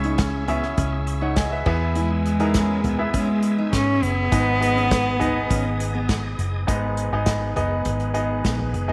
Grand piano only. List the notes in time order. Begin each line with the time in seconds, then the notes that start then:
Already playing: C#3 C#4 E4 G#4 C#5 E5
0.48 C#4 E4 G#4 E5
1.22 C#5 F#5
1.37 D#5 G#5
1.51 B4 E5
1.66 E3 B3 E4 G#4 E5
2.40 B3 E4 G#4 A#4
2.98 B3 E4 G#4 E5
4.32 G#2 B3 D#4 G#4 D#5
4.61 B3 D#4 G#4 D#5
5.20 B3 D#4 G#4 D#5
6.67 G#2 B3 D#4 G#4 D#5
7.13 B3 D#4 G#4 D#5
7.56 B3 D#4 G#4 D#5
8.14 B3 D#4 G#4 D#5
8.88 B3 D#4 G#4 D#5